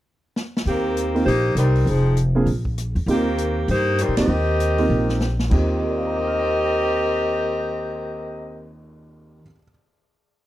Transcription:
0.36 snare
0.57 snare
0.65 upright bass D#2, saxophone section D#3 A#3 C4 G4, open hi-hat
0.97 closed hi-hat
1.14 grand piano A#3 C4 D#4 F4 G4, open hi-hat
1.26 upright bass A#1, saxophone section A#3 D#4 G4 C5, open hi-hat
1.55 upright bass C2, saxophone section G3 C4 D#4 A#4, cross-stick, closed hi-hat
1.75 open hi-hat
1.86 upright bass F1, saxophone section F3 C4 D#4 G#4, open hi-hat
2.17 closed hi-hat
2.35 grand piano A#3 C4 D4 F4 G#4
2.46 upright bass A#1, open hi-hat
2.65 kick
2.78 cross-stick, closed hi-hat
2.95 upright bass E2, open hi-hat
3.06 upright bass D#2, grand piano A#3 C4 D#4 F4 G4, open hi-hat
3.11 saxophone section D#3 A#3 C4 G4
3.38 closed hi-hat
3.68 upright bass G2, saxophone section A#3 D#4 G4 C5, open hi-hat
3.98 saxophone section G3 C4 D#4 A#4, cross-stick, closed hi-hat
4.08 upright bass A#2
4.17 upright bass F2, grand piano A#3 C4 D#4 F4 G4, saxophone section C4 G4 A#4 D#5, snare, ride
4.28 upright bass D#2
4.60 closed hi-hat
4.78 grand piano A#3 C4 D#4 F4 G4, open hi-hat
4.89 upright bass A#1
5.09 snare
5.21 snare
5.39 snare
5.50 grand piano D#2 D#3 C4 F4 G4, upright bass D#2, saxophone section C4 G4 A#4 D#5, kick, crash
5.70 cymbal swell
5.82 grand piano A#4
5.89 grand piano D5
5.98 grand piano F5
6.07 grand piano A#5
6.16 grand piano D6
6.27 grand piano F6
6.39 grand piano A#6

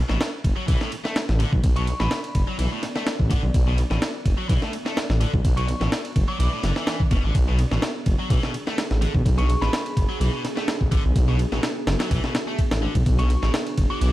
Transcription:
Already playing: ambient pad B3 D4 F#4 D5
0.09 detuned saw bass A1, distorted electric guitar B2, snare
0.21 snare, ride
0.44 detuned saw bass F#1, kick, ride
0.57 distorted electric guitar F#3
0.68 detuned saw bass B1, distorted electric guitar E3, kick, ride
0.80 distorted electric guitar A2, snare
0.92 ride
1.04 distorted electric guitar A3, snare
1.16 snare, ride
1.29 detuned saw bass A1, snare
1.39 distorted electric guitar D3, ride
1.52 detuned saw bass B1, kick
1.63 detuned saw bass B1, kick, ride
1.76 distorted electric guitar B2, synth bell C#6, ride
1.87 ride
2.00 detuned saw bass A1, distorted electric guitar B2, synth bell B5, snare
2.11 snare, ride
2.24 ride
2.35 detuned saw bass F#1, kick, ride
2.48 distorted electric guitar F#3
2.59 detuned saw bass B1, distorted electric guitar E3, ride
2.72 distorted electric guitar A2
2.83 snare, ride
2.96 distorted electric guitar A3, snare
3.07 snare, ride
3.19 detuned saw bass A1, kick
3.30 distorted electric guitar D3, kick, ride
3.43 detuned saw bass B1
3.54 detuned saw bass B1, kick, ride
3.67 distorted electric guitar B2
3.78 ride
3.90 detuned saw bass A1, distorted electric guitar B2, snare
4.02 snare, ride
4.26 detuned saw bass F#1, kick, ride
4.38 distorted electric guitar F#3
4.49 detuned saw bass B1, distorted electric guitar E3, kick, ride
4.62 distorted electric guitar A2, snare
4.73 ride
4.86 distorted electric guitar A3, snare
4.97 snare, ride
5.09 detuned saw bass A1, snare
5.21 distorted electric guitar D3, ride
5.34 detuned saw bass B1, kick
5.45 detuned saw bass B1, kick, ride
5.57 distorted electric guitar B2, synth bell C#6, ride
5.68 ride
5.81 detuned saw bass A1, distorted electric guitar B2, snare
5.92 snare, ride
6.05 ride
6.16 detuned saw bass F#1, kick, ride
6.28 distorted electric guitar F#3, synth bell D6
6.39 detuned saw bass B1, distorted electric guitar E3, ride
6.53 distorted electric guitar A2
6.63 detuned saw bass F#1, distorted electric guitar D3, snare, ride
6.76 distorted electric guitar E3, snare
6.87 distorted electric guitar E3, snare, ride
7.00 kick
7.11 detuned saw bass F#1, distorted electric guitar B2, kick, ride
7.24 detuned saw bass A1, distorted electric guitar D3
7.34 detuned saw bass B1, ambient pad G#4, kick, ride
7.49 distorted electric guitar B2
7.59 ride
7.71 detuned saw bass A1, distorted electric guitar B2, snare
7.82 snare, ride
8.06 detuned saw bass F#1, kick, ride
8.20 distorted electric guitar F#3
8.30 detuned saw bass B1, distorted electric guitar E3, kick, ride
8.43 distorted electric guitar B2, snare
8.54 ride
8.67 distorted electric guitar A3, snare
8.78 snare, ride
8.90 detuned saw bass A1, snare
9.02 distorted electric guitar D3, ride
9.14 detuned saw bass B1, kick
9.26 detuned saw bass B1, kick, ride
9.38 distorted electric guitar B2, synth bell C#6, ride
9.50 ride
9.62 detuned saw bass A1, distorted electric guitar B2, synth bell B5, snare
9.73 snare, ride
9.86 ride
9.97 detuned saw bass F#1, kick, ride
10.09 distorted electric guitar F#3
10.20 detuned saw bass B1, distorted electric guitar E3, ride
10.33 distorted electric guitar B2
10.45 snare, ride
10.57 distorted electric guitar A3, snare
10.68 snare, ride
10.81 detuned saw bass A1, kick
10.92 distorted electric guitar D3, kick, ride
11.05 detuned saw bass B1
11.16 detuned saw bass B1, kick, ride
11.28 distorted electric guitar B2
11.39 ride
11.52 detuned saw bass A1, distorted electric guitar B2, snare
11.63 snare, ride
11.87 detuned saw bass F#1, snare, ride
12.00 distorted electric guitar F#3, snare, ride
12.11 detuned saw bass B1, distorted electric guitar E3, kick, ride
12.23 distorted electric guitar B2, snare
12.35 snare, ride
12.47 distorted electric guitar A3
12.59 kick, ride
12.71 detuned saw bass A1, snare, ride
12.82 distorted electric guitar D3
12.95 detuned saw bass B1, kick, ride
13.06 detuned saw bass B1, kick, ride
13.19 distorted electric guitar B2, synth bell C#6, ride
13.30 ride
13.42 detuned saw bass A1, distorted electric guitar B2, snare
13.54 snare, ride
13.67 ride
13.78 detuned saw bass F#1, kick, ride
13.90 distorted electric guitar F#3, synth bell D6
14.01 detuned saw bass B1, distorted electric guitar E3, ride

